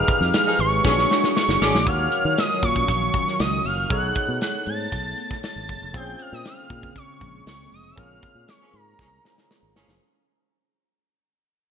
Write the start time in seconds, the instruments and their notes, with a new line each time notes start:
Already playing: analog synth pad F3 G#3 D#4 B4, tine electric piano D#4 G4 G#4 B4, analog synth lead F6
0.08 kick, closed hi-hat
0.21 fingered electric bass F2, snare
0.34 analog synth lead F6, snare, closed hi-hat
0.47 horn section F3 D#4 G#4
0.59 fingered electric bass G#1, analog synth lead C#6, closed hi-hat
0.84 fingered electric bass A#1, horn section D3 C#4 G#4, analog synth pad G#3 A#3 D4, tine electric piano C#4 F#4 G#4 C#5, kick, snare
0.90 tine electric piano D4
0.99 snare
1.11 snare
1.24 snare
1.36 analog synth lead C#6, snare
1.49 fingered electric bass F#1, snare
1.61 fingered electric bass G#1, horn section D3 C#4 G#4, analog synth lead D6, snare
1.75 fingered electric bass A#1, snare
1.85 fingered electric bass D#2, analog synth pad D#3 F#3 C#4 F5, tine electric piano F4 F#4 A#4 C#5, analog synth lead F6, kick, closed hi-hat
2.12 closed hi-hat
2.25 fingered electric bass D#3
2.38 analog synth lead D#6, snare, closed hi-hat
2.63 fingered electric bass A#2, analog synth lead C#6, kick, closed hi-hat
2.76 kick
2.88 fingered electric bass A#1, kick, closed hi-hat
3.14 kick, closed hi-hat
3.28 snare
3.40 fingered electric bass C#2, analog synth lead D#6, snare, closed hi-hat
3.65 fingered electric bass F#1, analog synth lead F6, open hi-hat
3.89 fingered electric bass B1, analog synth pad A3 B3 D#4, tine electric piano D#4 G#4 A4 C#5, analog synth lead F#6, kick, closed hi-hat
4.15 kick, closed hi-hat
4.28 fingered electric bass B2
4.41 analog synth lead F#6, snare, closed hi-hat
4.66 fingered electric bass G#2, analog synth lead A6, closed hi-hat
4.92 fingered electric bass B1, kick, closed hi-hat
5.18 closed hi-hat
5.31 kick, snare
5.43 analog synth lead A6, snare, closed hi-hat
5.56 fingered electric bass G#1
5.69 fingered electric bass F#1, kick, open hi-hat
5.82 fingered electric bass F1
5.93 fingered electric bass A#1, analog synth pad C#3 G#3 A#3, tine electric piano C4 F4 G#4, analog synth lead G6, kick, closed hi-hat
5.99 tine electric piano C#4
6.19 analog synth lead F6, closed hi-hat
6.33 fingered electric bass A#2, analog synth lead D#6, snare
6.45 analog synth lead F6, snare, closed hi-hat
6.70 fingered electric bass A#2, kick, closed hi-hat
6.83 kick
6.96 analog synth lead C#6, kick, closed hi-hat
7.21 fingered electric bass A#1, kick, closed hi-hat
7.47 fingered electric bass C#2, analog synth lead C#6, snare, closed hi-hat
7.72 fingered electric bass F1, analog synth lead D#6, open hi-hat
7.91 analog synth lead E6
7.95 fingered electric bass A#1, tine electric piano C#4 F4 G#4 A#4, analog synth lead F6, kick, closed hi-hat
8.23 kick, closed hi-hat
8.35 fingered electric bass A#2
8.48 analog synth lead C#6, snare, closed hi-hat
8.61 horn section F3 C#4 G#4
8.73 fingered electric bass G#2, analog synth lead A#5, closed hi-hat
8.99 fingered electric bass C2, horn section F3 C#4 G#4, kick, snare
9.24 tine electric piano C#4 F4 G#4 C5, snare
9.38 snare
9.51 snare
9.63 fingered electric bass G#1
9.75 fingered electric bass G1, horn section F3 C#4 G#4, snare
9.88 fingered electric bass F1, snare